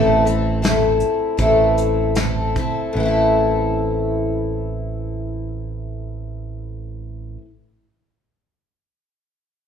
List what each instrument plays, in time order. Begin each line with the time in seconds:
Already playing: picked electric bass A1, twelve-string acoustic guitar A2 E3 A3 C4 E4 A4
0.25 twelve-string acoustic guitar A3 C4 E4 A4, closed hi-hat
0.62 twelve-string acoustic guitar A3 C4 E4 A4, snare, closed hi-hat
1.00 closed hi-hat
1.37 picked electric bass A1, twelve-string acoustic guitar A2 E3 A3 C4 E4 A4, kick, closed hi-hat
1.77 closed hi-hat
2.15 twelve-string acoustic guitar A3 C4 E4 A4, snare, closed hi-hat
2.56 twelve-string acoustic guitar A3 C4 E4 A4, kick, closed hi-hat
2.93 picked electric bass A1, twelve-string acoustic guitar A2 E3
3.00 twelve-string acoustic guitar A3 C4
3.05 twelve-string acoustic guitar E4 A4